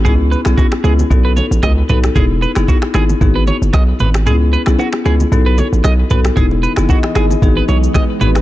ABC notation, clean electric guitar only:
X:1
M:4/4
L:1/16
Q:"Swing 16ths" 1/4=114
K:E
V:1 name="Clean electric guitar"
G z B z F z G z2 B c z d z B z | G z B z F z G z2 B c z d z B z | G z B z F z G z2 B c z d z B z | G z B z F z G z2 B c z d z B z |]